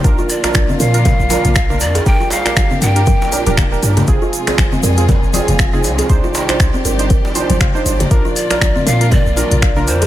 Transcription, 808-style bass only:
X:1
M:4/4
L:1/16
Q:"Swing 16ths" 1/4=119
K:Bbmix
V:1 name="808-style bass" clef=bass
B,,, z3 B,,, z B,,3 B,,, z B,,,3 F,, z | G,,, z3 G,,, z G,,3 z2 D,,,3 G,, z | F,,, z3 F,,, z F,,3 F,,, z F,,,3 C,, z | C,, z3 C,, z G,,,3 z2 G,,, z2 G,,, z |
B,,, z3 B,,, z B,,3 B,,, z B,,,3 F,, z |]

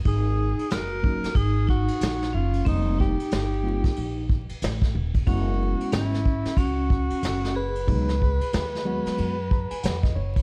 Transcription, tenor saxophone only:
X:1
M:4/4
L:1/8
Q:"Swing 16ths" 1/4=92
K:Gb
V:1 name="Tenor saxophone"
A2 B2 A G2 F | E =G4 z3 | G2 _F2 G3 c- | c6- c z |]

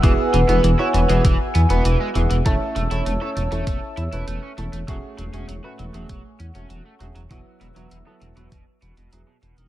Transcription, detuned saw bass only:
X:1
M:4/4
L:1/16
Q:1/4=99
K:E
V:1 name="Detuned saw bass" clef=bass
E,,, z E,,, E,,, E,,, z E,,, E,,, E,,, z E,, E,,, E,,, z E,,, E,,, | E,,, z E,,, E,,, E,,, z E,,, E,,, E,,, z E,, E,,, E,,, z E,,, E,,, | E,,, z E,,, E,,, E,,, z E,,, E,,, E,,, z E,, E,,, E,,, z E,,, E,,, | E,,, z E,,, E,,, E,,, z E,,, E,,, E,,, z E,,, E,,, E,,, z E,,, E,,, |]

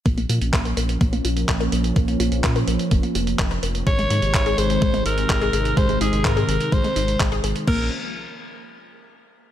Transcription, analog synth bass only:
X:1
M:4/4
L:1/16
Q:1/4=126
K:Bbm
V:1 name="Analog synth bass" clef=bass
B,,,2 B,, B,,, B,,,2 B,,,2 B,,,2 B,,,2 B,,,2 B,,,2 | B,,,2 B,,, B,,, B,,2 B,,, z F,,, z F,,,2 F,,,2 F,,,2 | A,,,2 A,, A,,, A,,,2 A,,,2 A,,,2 A,,,2 A,,,2 A,,,2 | A,,,2 A,,, A,,, A,,2 A,,, z A,,, z A,,,2 A,,,2 A,,, z |
B,,,2 z12 z2 |]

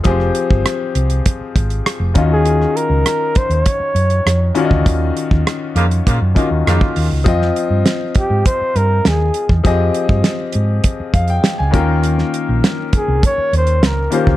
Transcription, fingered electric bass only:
X:1
M:4/4
L:1/16
Q:1/4=100
K:Ebmix
V:1 name="Fingered electric bass" clef=bass
F,,,2 z G,,, z2 C,,2 z2 A,,,2 z F,,, E,,2- | E,,2 z D,, z3 E,, z2 _G,,2 F,,2 z =D,, | E,,2 z E,, z2 F,,2 B,, _G,, z E,, F,, z E,, D,, | F,,2 z G,, z3 A,, z2 G,,2 E,,2 z _F,, |
F,,2 z G,, z2 A,,2 z2 F,,2 z D,, E,,2- | E,,2 z B,,, z3 C,, z2 E,,2 D,,2 z =D,, |]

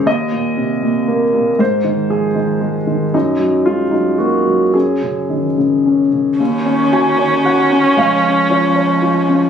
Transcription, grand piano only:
X:1
M:3/4
L:1/8
Q:1/4=114
K:Ebdor
V:1 name="Grand piano"
e6 | c2 A z3 | E2 F E G2 | A4- A z |
z2 a2 g2 | f2 d3 z |]
V:2 name="Grand piano" clef=bass
E,, B,, C, B,, B, B,, | A,, E, F, E, A, E, | G,, G, A, G, B, G, | G,, D, E, D, D D, |
E,, D G d G D | D,, D F d F D |]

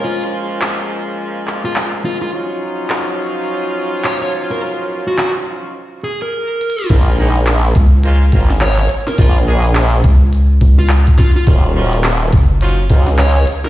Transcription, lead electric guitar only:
X:1
M:4/4
L:1/16
Q:"Swing 16ths" 1/4=105
K:Bbphr
V:1 name="Lead electric guitar"
F z8 z2 F z2 F F | z12 d d z B | z3 G G z4 z A B4- B | z12 d d z B |
F z8 z2 F z2 F F | z12 d d z B |]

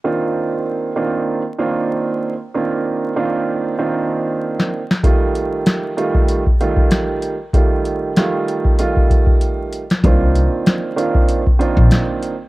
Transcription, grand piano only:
X:1
M:4/4
L:1/8
Q:"Swing 16ths" 1/4=96
K:Cdor
V:1 name="Grand piano"
[E,B,CDF]3 [E,B,CDF] z [E,B,CDF]2 z | [E,B,CDF]2 [E,B,CDF]2 [E,B,CDF]3 z | [E,G,A,F]3 [E,G,A,F] z [E,G,A,F]2 z | [E,G,A,F]2 [E,G,A,F]2 [E,G,A,F]3 z |
[E,B,CDF]3 [E,B,CDF] z [E,B,CDF]2 z |]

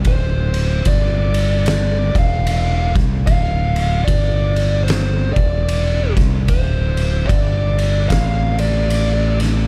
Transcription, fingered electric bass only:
X:1
M:4/4
L:1/8
Q:"Swing" 1/4=74
K:Dm
V:1 name="Fingered electric bass" clef=bass
D,,,2 G,,,3 E,,,2 C,, | D,,,2 G,,,3 E,,,2 C,, | D,,,2 G,,,2 A,,,4 |]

